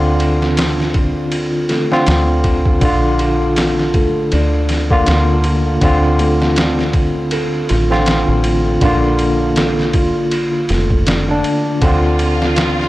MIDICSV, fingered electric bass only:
0, 0, Header, 1, 2, 480
1, 0, Start_track
1, 0, Key_signature, -1, "minor"
1, 0, Tempo, 750000
1, 1805, Time_signature, 4, 2, 24, 8
1, 8246, End_track
2, 0, Start_track
2, 0, Title_t, "Fingered electric bass"
2, 0, Program_c, 0, 33
2, 0, Note_on_c, 0, 38, 90
2, 1307, Note_off_c, 0, 38, 0
2, 1330, Note_on_c, 0, 38, 79
2, 1788, Note_off_c, 0, 38, 0
2, 1804, Note_on_c, 0, 34, 90
2, 2745, Note_off_c, 0, 34, 0
2, 2770, Note_on_c, 0, 38, 84
2, 3228, Note_off_c, 0, 38, 0
2, 3248, Note_on_c, 0, 38, 81
2, 3707, Note_off_c, 0, 38, 0
2, 3724, Note_on_c, 0, 38, 91
2, 4905, Note_off_c, 0, 38, 0
2, 4933, Note_on_c, 0, 33, 87
2, 5279, Note_off_c, 0, 33, 0
2, 5301, Note_on_c, 0, 33, 83
2, 5625, Note_off_c, 0, 33, 0
2, 5644, Note_on_c, 0, 34, 93
2, 6825, Note_off_c, 0, 34, 0
2, 6848, Note_on_c, 0, 29, 84
2, 7307, Note_off_c, 0, 29, 0
2, 7565, Note_on_c, 0, 38, 92
2, 8246, Note_off_c, 0, 38, 0
2, 8246, End_track
0, 0, End_of_file